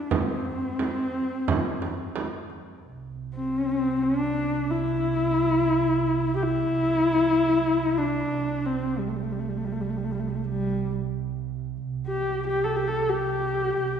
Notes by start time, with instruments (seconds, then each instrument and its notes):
0.06 horsehead fiddle D4
0.10 horsehead fiddle C4, frame drum
0.45 frame drum
0.79 frame drum
1.14 frame drum
1.48 frame drum
1.82 frame drum
2.16 frame drum
2.50 frame drum
2.85 double bass C2
3.35 horsehead fiddle C4
4.03 horsehead fiddle D4
4.71 horsehead fiddle E4
6.36 horsehead fiddle G4
6.43 horsehead fiddle E4
7.98 horsehead fiddle D4
8.31 double bass C2
8.65 horsehead fiddle C4
8.98 horsehead fiddle G3
9.08 horsehead fiddle A3
9.16 horsehead fiddle G3
9.23 horsehead fiddle A3
9.31 horsehead fiddle G3
9.39 horsehead fiddle A3
9.49 horsehead fiddle G3
9.57 horsehead fiddle A3
9.64 horsehead fiddle G3
9.72 horsehead fiddle A3
9.81 horsehead fiddle G3
9.89 horsehead fiddle A3
9.97 horsehead fiddle G3
10.04 horsehead fiddle A3
10.11 horsehead fiddle G3
10.19 horsehead fiddle A3
10.28 horsehead fiddle G3
10.35 horsehead fiddle A3
10.44 horsehead fiddle G3
12.07 horsehead fiddle G4
12.48 horsehead fiddle G4
12.64 horsehead fiddle A4
12.76 horsehead fiddle G4
12.88 horsehead fiddle A4
13.09 horsehead fiddle G4
13.77 double bass C2